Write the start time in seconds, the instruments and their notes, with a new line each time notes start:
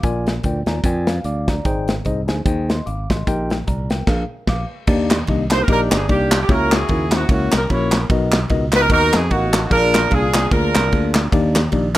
Already playing: tine electric piano F5 D6
0.03 fingered electric bass A#1, tine electric piano A#2 F4 A#4 D5 G#5, kick, closed hi-hat
0.27 snare, closed hi-hat
0.43 fingered electric bass D2, tine electric piano F4 A#4 D5 G5, kick, closed hi-hat
0.66 fingered electric bass D#2, tine electric piano F4 A#4 D5 G#5 A#5, snare, closed hi-hat
0.84 fingered electric bass F2, tine electric piano F4 A#4 D5 G5 G#5, kick, closed hi-hat
1.07 tine electric piano F5, snare, closed hi-hat
1.24 fingered electric bass D2, tine electric piano D5 F5 D6, closed hi-hat
1.48 tine electric piano D5 A#5, kick, snare, closed hi-hat
1.65 fingered electric bass G#1, tine electric piano G#2 D#4 G#4 C5 G5, kick, closed hi-hat
1.88 snare, closed hi-hat
2.05 fingered electric bass C2, tine electric piano D#4 G#4 C5 D#5, kick, closed hi-hat
2.27 fingered electric bass D2, tine electric piano D#4 G#4 C5 G#5, snare, closed hi-hat
2.45 fingered electric bass D#2, tine electric piano D#4 G#4 C5 G5, kick, closed hi-hat
2.70 tine electric piano D#5 C6, snare, closed hi-hat
2.86 fingered electric bass G#1, tine electric piano F5 D6, closed hi-hat
3.10 fingered electric bass A1, tine electric piano D#5 C6, kick, snare, closed hi-hat
3.27 fingered electric bass A#1, tine electric piano A#2 D#4 G4 A#4 G5, kick, closed hi-hat
3.50 snare, closed hi-hat
3.67 fingered electric bass C2, tine electric piano D5 A#5, kick, closed hi-hat
3.90 tine electric piano A#4 G5, snare, closed hi-hat
4.07 fingered electric bass A#1, tine electric piano A#2 D4 G#4 A#4 F5, kick, snare, crash
4.47 fingered electric bass A#1, tine electric piano F5 D6, kick, snare, crash
4.87 fingered electric bass D#2, tine electric piano D#3 A#3 D4 D#4 G4 D5, kick, crash
5.10 snare, clap, ride
5.27 fingered electric bass C2, tine electric piano A#3 D4 D#4 G4 D#5, kick, ride
5.50 tine electric piano A#3 D4 D#4 G4 A#4, horn section C5, snare, clap, ride
5.62 horn section A#4
5.68 fingered electric bass A#1, tine electric piano A#3 D4 D#4 G4 D#5, horn section D4 G4 A#4, kick, ride
5.91 fingered electric bass G1, horn section G#4, snare, clap, ride
6.08 fingered electric bass C2, tine electric piano A#3 D4 D#4 G4 D5, horn section A#3 D4 G4, kick, ride
6.32 snare, clap, ride
6.43 horn section G4
6.49 fingered electric bass C#2, tine electric piano C#3 A#3 C#4 E4 F#4 C#5, horn section E4 F#4 A#4, kick, ride
6.72 horn section E4 G#4, snare, clap, ride
6.89 fingered electric bass D#2, tine electric piano A#3 C#4 E4 F#4 A#4, kick, ride
7.11 tine electric piano A#3 C#4 E4 F#4 C5, snare, clap, ride
7.16 horn section F#4
7.29 fingered electric bass C#2, horn section A#3 F#4, tine electric piano A#3 C#4 E4 F#4 C#5, kick, ride
7.52 fingered electric bass C2, horn section A#4, snare, clap, ride
7.70 fingered electric bass A#1, tine electric piano A#3 C#4 E4 F#4 C#5, horn section E4 A#4 C#5, kick, ride
7.92 snare, clap, ride
8.10 fingered electric bass B1, tine electric piano B2 B3 D#4 F#4 A#4 D#5, kick, ride
8.32 snare, clap, ride
8.50 fingered electric bass C#2, tine electric piano B3 D#4 F#4 A#4 D#5, kick, ride
8.72 tine electric piano B3 D#4 F#4 A#4 D#5, horn section B4, snare, clap, ride
8.82 horn section A#4
8.90 fingered electric bass D#2, tine electric piano B3 D#4 F#4 A#4 D#5, horn section D#4 F#4 A#4, kick, ride
9.13 fingered electric bass F2, horn section G#4, snare, clap, ride
9.30 fingered electric bass A1, horn section A#3 D#4 F#4, tine electric piano B3 D#4 F#4 A#4 F#5, kick, ride
9.53 snare, clap, ride
9.63 horn section F#4
9.70 fingered electric bass A#1, tine electric piano A#2 A#3 D4 F4 G#4 D5, horn section D4 F4 A#4, kick, ride
9.94 snare, clap, ride
10.10 fingered electric bass C2, tine electric piano A#3 D4 F4 G#4 F5, horn section D4 F4 G#4, kick, ride
10.34 tine electric piano A#3 D4 F4 G#4 D5, snare, clap, ride
10.51 fingered electric bass D2, tine electric piano A#3 D4 F4 G#4 A#4, horn section D4 F4 A#4, kick, ride
10.75 fingered electric bass C2, snare, clap, ride
10.92 fingered electric bass D2, tine electric piano A#3 D4 F4 G#4 A#4, kick, ride
11.14 snare, clap, ride
11.32 fingered electric bass D#2, tine electric piano D#3 A#3 D4 D#4 G4 D5, kick, ride
11.55 snare, clap, ride
11.72 fingered electric bass A#1, tine electric piano A#3 D4 D#4 G4 D5, kick, ride